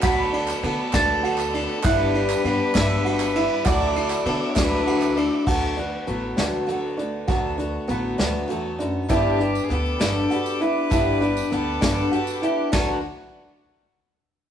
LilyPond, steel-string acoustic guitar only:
\new Staff \with { instrumentName = "Steel-string acoustic guitar" } { \clef bass \time 6/8 \key d \major \tempo 4. = 66 << { r2. | r2. | r2. | r8 fis'8 b4 d'4 |
r8 fis'8 b2 | r2. | r2. | r2. | } \\ { r2. | r2. | r2. | d,4. d4. |
d,4. d,8 e,8 fis,8 | r2. | r2. | r2. | } >> }